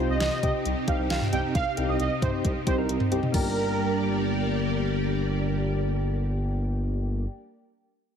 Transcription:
0.00 3.30 C3 medium
0.00 0.18 C4 medium
0.00 3.30 C4 medium
0.00 0.18 D#4 medium
0.00 3.30 D#4 medium
0.00 0.18 F4 medium
0.00 3.30 G4 medium
0.09 0.18 C2 loud
0.09 0.18 D#5 medium
0.20 0.29 C2 loud
0.20 0.38 D#5 medium
0.20 snare loud
0.20 closed hi-hat medium
0.43 0.52 C3 loud
0.43 0.63 C4 medium
0.43 0.63 D#4 medium
0.43 0.63 G4 medium
0.43 0.52 D#5 medium
0.43 kick medium
0.43 closed hi-hat medium
0.65 0.74 C2 loud
0.65 closed hi-hat medium
0.88 0.96 C2 loud
0.88 0.98 C4 medium
0.88 0.98 D#4 medium
0.88 0.98 G4 medium
0.88 0.97 F5 medium
0.88 kick medium
0.88 closed hi-hat medium
0.99 1.08 C2 loud
0.99 1.19 C4 medium
0.99 1.19 D#4 medium
0.99 1.19 G4 medium
1.10 1.19 C2 medium
1.10 1.19 F5 medium
1.10 snare loud
1.10 closed hi-hat medium
1.21 mid tom medium
1.33 1.41 C2 loud
1.33 1.53 C4 medium
1.33 1.53 D#4 medium
1.33 1.53 G4 medium
1.33 1.42 G5 medium
1.33 closed hi-hat medium
1.55 1.64 C2 loud
1.55 1.73 F5 loud
1.55 kick loud
1.55 closed hi-hat medium
1.77 1.86 C2 medium
1.77 1.97 C4 medium
1.77 1.97 D#4 medium
1.77 1.97 G4 medium
1.77 closed hi-hat medium
1.88 1.97 C2 medium
1.88 1.97 D#5 medium
2.00 2.09 C2 loud
2.00 2.17 D#5 medium
2.00 closed hi-hat medium
2.22 2.31 C3 loud
2.22 2.42 C4 medium
2.22 2.42 D#4 medium
2.22 2.42 G4 medium
2.22 2.31 C5 medium
2.22 kick medium
2.22 closed hi-hat medium
2.22 mid tom medium
2.45 2.53 C2 loud
2.45 kick medium
2.45 closed hi-hat medium
2.67 2.75 C2 medium
2.67 2.77 C4 medium
2.67 2.77 D#4 medium
2.67 2.77 G4 medium
2.67 2.76 C5 medium
2.67 kick medium
2.67 closed hi-hat medium
2.78 2.87 C2 loud
2.78 2.98 C4 medium
2.78 2.98 D#4 medium
2.78 2.98 A#4 medium
2.89 2.98 C2 loud
2.89 closed hi-hat medium
3.00 mid tom medium
3.12 3.20 C2 loud
3.12 3.32 C4 medium
3.12 3.32 D#4 medium
3.12 3.32 G4 medium
3.12 closed hi-hat medium
3.23 mid tom medium
3.32 7.26 G1 medium
3.32 7.26 G3 medium
3.32 7.24 A#3 medium
3.32 7.26 D4 medium
3.32 7.26 G4 medium
3.32 4.64 A#4 medium
3.32 7.26 A#4 medium
3.32 7.26 D5 medium
3.32 kick loud
3.32 crash medium
3.36 7.28 G4 medium

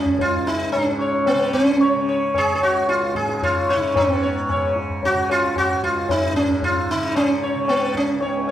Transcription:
0.00 0.13 C#2 medium
0.00 0.74 G#2 medium
0.00 1.34 C#3 medium
0.00 0.20 C#4 medium
0.06 tabla ge medium
0.14 2.57 C#2 medium
0.19 0.48 F4 medium
0.19 tabla tin medium
0.19 tabla ge medium
0.47 0.72 D#4 medium
0.72 3.15 G#2 medium
0.72 1.27 C#4 medium
0.72 tabla na medium
1.01 1.25 C#5 soft
1.26 1.53 B3 medium
1.26 tabla na medium
1.34 1.95 C#3 medium
1.53 2.04 C#4 medium
1.53 tabla ke medium
1.80 2.07 C#5 soft
1.80 tabla tin medium
1.95 3.76 C#3 medium
2.09 2.33 C#5 soft
2.34 2.54 G#4 medium
2.34 2.60 C#5 soft
2.34 tabla na medium
2.34 tabla ge medium
2.55 5.74 C#2 medium
2.55 2.62 G#4 medium
2.62 2.88 F#4 medium
2.62 2.87 C#5 soft
2.88 3.16 F4 medium
2.88 tabla te medium
3.02 tabla te medium
3.15 3.94 G#2 medium
3.15 3.43 G#4 medium
3.15 tabla ke medium
3.29 tabla te medium
3.42 3.70 F4 medium
3.42 3.67 C#5 soft
3.42 tabla tin medium
3.42 tabla ge medium
3.70 3.96 D#4 medium
3.70 3.94 C#5 soft
3.76 4.55 C#3 medium
3.94 6.33 G#2 medium
3.94 4.72 B3 medium
3.94 tabla na medium
3.94 tabla ge medium
4.23 4.47 C#5 soft
4.49 4.75 C#5 soft
4.49 tabla na medium
4.49 tabla ge medium
4.55 5.14 C#3 medium
4.76 tabla te medium
4.90 tabla ge soft
5.03 5.31 F#4 medium
5.03 tabla tin medium
5.03 tabla ge medium
5.14 6.94 C#3 medium
5.30 5.57 F4 medium
5.30 tabla na medium
5.43 tabla ke medium
5.56 5.83 F#4 medium
5.56 tabla na medium
5.56 tabla ge medium
5.74 8.14 C#2 medium
5.82 6.10 F4 medium
5.82 tabla ge medium
6.09 6.36 D#4 medium
6.09 tabla na medium
6.09 tabla ge medium
6.33 8.51 G#2 medium
6.33 6.63 C#4 medium
6.33 tabla te medium
6.49 tabla ge medium
6.62 6.90 F4 medium
6.62 tabla tin medium
6.62 tabla ge medium
6.91 7.55 C#3 medium
6.91 7.16 D#4 medium
7.15 7.69 C#4 medium
7.15 tabla na medium
7.43 7.67 C#5 soft
7.55 8.51 C#3 medium
7.68 7.96 B3 medium
7.68 tabla na medium
7.95 8.28 C#4 medium
7.95 tabla ke medium
8.14 8.51 C#2 medium
8.21 8.46 C#5 soft
8.21 tabla tin medium
8.28 8.45 B3 medium
8.48 tabla na medium

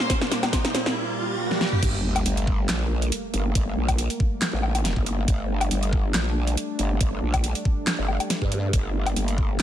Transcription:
0.00 1.79 A#2 medium
0.00 1.79 G3 medium
0.00 1.79 A#3 medium
0.00 riser medium
0.10 0.28 C5 loud
0.10 kick loud
0.10 snare loud
0.10 closed hi-hat medium
0.21 snare loud
0.31 0.50 C5 loud
0.31 snare loud
0.31 closed hi-hat medium
0.43 snare medium
0.43 closed hi-hat soft
0.43 low woodblock medium
0.53 0.71 C5 loud
0.53 kick loud
0.53 snare loud
0.53 closed hi-hat medium
0.65 snare medium
0.65 closed hi-hat soft
0.75 0.93 C5 loud
0.75 snare loud
0.75 closed hi-hat medium
0.86 snare loud
0.96 swell medium
1.51 snare soft
1.61 snare medium
1.73 mid tom medium
1.83 2.24 G1 medium
1.83 9.62 G3 medium
1.83 9.62 A3 medium
1.83 5.27 A#3 medium
1.83 kick loud
1.83 closed hi-hat medium
1.83 crash loud
1.83 sub drop medium
2.16 closed hi-hat medium
2.16 low woodblock medium
2.26 2.67 G1 medium
2.26 closed hi-hat medium
2.37 closed hi-hat medium
2.47 kick loud
2.69 3.10 A#1 loud
2.69 snare loud
2.69 clap medium
2.69 closed hi-hat medium
3.02 closed hi-hat medium
3.12 closed hi-hat medium
3.34 3.54 G1 loud
3.34 closed hi-hat medium
3.55 3.75 G1 loud
3.55 kick loud
3.55 closed hi-hat medium
3.77 4.08 A#1 loud
3.88 kick medium
3.88 closed hi-hat medium
3.88 low woodblock medium
3.98 closed hi-hat medium
4.10 closed hi-hat medium
4.20 kick loud
4.42 snare loud
4.42 clap medium
4.42 closed hi-hat medium
4.53 4.95 A1 loud
4.63 low woodblock medium
4.75 closed hi-hat medium
4.75 low woodblock medium
4.85 snare medium
4.85 closed hi-hat medium
4.96 5.26 G1 loud
4.96 kick medium
5.06 closed hi-hat medium
5.28 5.70 G1 medium
5.28 8.72 D4 medium
5.28 kick loud
5.28 closed hi-hat medium
5.61 closed hi-hat soft
5.61 low woodblock medium
5.71 6.13 G1 medium
5.71 closed hi-hat medium
5.83 closed hi-hat soft
5.93 kick loud
6.14 6.56 A#1 loud
6.14 snare loud
6.14 clap medium
6.14 closed hi-hat medium
6.47 closed hi-hat soft
6.57 closed hi-hat medium
6.79 6.99 G1 medium
6.79 closed hi-hat medium
7.01 7.21 G1 medium
7.01 kick loud
7.01 closed hi-hat medium
7.22 7.54 A#1 loud
7.34 kick medium
7.34 closed hi-hat medium
7.34 low woodblock medium
7.44 closed hi-hat medium
7.55 closed hi-hat medium
7.65 kick loud
7.87 snare loud
7.87 clap medium
7.87 closed hi-hat medium
7.99 8.18 G1 loud
8.08 low woodblock medium
8.20 closed hi-hat medium
8.20 low woodblock medium
8.30 snare medium
8.30 closed hi-hat medium
8.42 8.72 G2 medium
8.42 kick medium
8.52 closed hi-hat medium
8.73 9.15 G1 loud
8.73 9.62 A#3 medium
8.73 kick loud
8.73 closed hi-hat medium
9.06 closed hi-hat soft
9.06 low woodblock medium
9.16 9.58 G1 medium
9.16 closed hi-hat medium
9.28 closed hi-hat soft
9.38 kick loud

